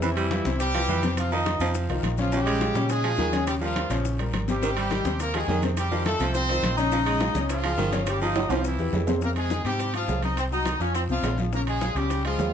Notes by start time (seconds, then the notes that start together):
Already playing: F2
0.02 C3 E3 C4 E4 C5, high bongo, high conga, long guiro, maracas
0.16 G3, high bongo, high conga, high timbale, maracas
0.31 E3 E4 F4, high bongo, high conga, high timbale, short guiro, maracas
0.45 C2 C3 C4 C5, high conga, short guiro, maracas
0.60 G3 G4, high bongo, high conga, high timbale, maracas
0.74 E3 F3 E4 F4, high bongo, high conga, high timbale, maracas
0.88 F2 E3 E4 F4, high bongo, low bongo, high conga, short guiro, maracas
1.03 C3 C4 C5, high bongo, high conga, high timbale, short guiro, maracas
1.17 F3 F4, high bongo, high conga, high timbale, long guiro, maracas
1.32 D#3 F3 D#4 F4 D#5, high bongo, maracas
1.46 high bongo, high conga, high timbale, short guiro, maracas
1.60 F2 C3 F3 C4 C5, high timbale, short guiro, maracas
1.74 high bongo, high conga, long guiro, maracas
1.89 C2 D#3 D#4 F4, high bongo, high conga, high timbale, maracas
2.03 A#1, high bongo, low bongo, high conga, high timbale, short guiro, maracas
2.17 C#3 F3 C#4 F4 C#5, high bongo, high conga, short guiro, maracas
2.32 C#3 F3 G3 C#4 G4 C#5, high bongo, high conga, long guiro, maracas
2.46 G#3, high bongo, high timbale, maracas
2.61 F3 F4 G#4, high bongo, high conga, high timbale, short guiro, maracas
2.74 A#2 C#3 C#4 C#5, high conga, short guiro, maracas
2.89 G#3 G#4, high bongo, high conga, high timbale, long guiro, maracas
3.04 F3 F4 G#4, high bongo, high conga, high timbale, maracas
3.18 D#2 D#3 F3 F4 G#4, high bongo, low bongo, high conga, short guiro, maracas
3.32 C#3 C#4 C#5, high bongo, high conga, high timbale, short guiro, maracas
3.47 G3 G4, high bongo, high conga, high timbale, long guiro, maracas
3.61 F3 G3 F4 G4 A#4, high bongo, high conga, maracas
3.76 high bongo, high conga, high timbale, short guiro, maracas
3.90 A#1 C#3 F3 C#4 C#5, high timbale, short guiro, maracas
4.05 high bongo, high conga, long guiro, maracas
4.19 G3 G4 A#4, high bongo, high conga, high timbale, maracas
4.33 G#1, high bongo, low bongo, high conga, high timbale, short guiro, maracas
4.48 C3 G3 C4 G4 C5, high bongo, high conga, short guiro, maracas
4.62 C3 D#3 C4 C5, high bongo, high conga, long guiro, maracas
4.77 G3, high bongo, high conga, high timbale, maracas
4.91 D#3 D#4 G4, high bongo, high conga, high timbale, short guiro, maracas
5.04 D#2 C3 C4 C5, high conga, short guiro, maracas
5.20 A#3 A#4, high bongo, high conga, high timbale, long guiro, maracas
5.34 D#3 F3 G#3 D#4 G4 G#4, high bongo, high conga, high timbale, maracas
5.48 F2 D#3 D#4 G4, high bongo, low bongo, high conga, low timbale, short guiro, maracas
5.62 C3 C4 C5, high bongo, high conga, high timbale, short guiro, maracas
5.77 G3 G4, high bongo, high conga, high timbale, long guiro, maracas
5.91 D#3 F3 D#4 F4, high bongo, high conga, maracas
6.06 A3 A4, high bongo, high conga, high timbale, short guiro, maracas
6.20 C2 C3 F3 C4 C5, high timbale, short guiro, maracas
6.34 C4 C5, high bongo, high conga, long guiro, maracas
6.49 D#3 D#4 F4, high bongo, high conga, high timbale, maracas
6.63 A#1, high bongo, low bongo, high conga, high timbale, short guiro, maracas
6.77 C#3 C#4 D#4 C#5 D#5, high bongo, short guiro, maracas
6.92 C#3 F3 C#4 C#5, high bongo, long guiro, maracas
7.06 G#3, high bongo, high conga, high timbale, maracas
7.20 F3 F4 G#4, high bongo, high conga, high timbale, short guiro, maracas
7.34 C#2 C#3 C#4 C#5, high conga, short guiro, maracas
7.49 F3 F4, high bongo, high conga, high timbale, long guiro, maracas
7.64 F3 F4 G#4, high bongo, high conga, high timbale, maracas
7.78 G1 D#3 F3 F4 G#4, high bongo, low bongo, high conga, short guiro, maracas
7.92 C#3 C#4 C#5, high bongo, high conga, high timbale, short guiro, maracas
8.06 G3 G4, high bongo, high conga, high timbale, long guiro, maracas
8.21 F3 D#4 F4 G4 D#5, high bongo, high conga, maracas
8.36 high bongo, high conga, high timbale, short guiro, maracas
8.49 C2 C3 F3 C4 F4 C5, high timbale, short guiro, maracas
8.64 E3 E4, high bongo, high conga, long guiro, maracas
8.78 E2 E3 E4 G4, high bongo, high conga, maracas
8.93 F2, high bongo, low bongo, high conga, low timbale, short guiro, maracas
9.07 C3 C4 C5, high bongo, high conga, low timbale, short guiro, maracas
9.21 C3 A#3 C4 A#4, high bongo, high conga, long guiro, maracas
9.36 G#3 G#4, high bongo, high conga, high timbale, maracas
9.50 D#3 D#4, high bongo, high conga, low timbale, short guiro, maracas
9.64 G#2 C3 G3 C4 G4, high bongo, high conga, high timbale, short guiro, maracas
9.79 high bongo, high conga, high timbale, long guiro, maracas
9.94 F3 F4, high bongo, high conga, high timbale, maracas
10.08 C2, high bongo, low bongo, high conga, low timbale, short guiro, maracas
10.22 C4 D#4 C5 D#5, high conga, high timbale, short guiro, maracas
10.37 C4 C5, high bongo, high timbale, long guiro, maracas
10.51 F#3 D#4 F#4 D#5, high bongo, high conga, maracas
10.65 D#3 D#4, high bongo, high conga, high timbale, low timbale, short guiro, maracas
10.80 F2 F3 C#4 F4 C#5, high bongo, short guiro, maracas
10.94 C4 C5, high bongo, high conga, high timbale, long guiro, maracas
11.08 C2 C3 F3 C4 F4, high bongo, high conga, maracas
11.23 A#1, high bongo, low bongo, high conga, high timbale, low timbale, short guiro, maracas
11.38 F3 F4, high conga, short guiro, maracas
11.53 C#3 A#3 C#4 A#4, high bongo, long guiro, maracas
11.67 G#3 G#4, high bongo, high conga, high timbale, maracas
11.81 F3 F4, high bongo, high conga, low timbale, short guiro, maracas
11.95 C#2 C#3 G3 C#4 G4, high bongo, high conga, high timbale, short guiro, maracas
12.10 high bongo, high conga, high timbale, long guiro, maracas
12.25 F3 G#3 F4 G#4, high bongo, high conga, high timbale, maracas
12.38 D#2, high bongo, low bongo, high conga, low timbale, short guiro, maracas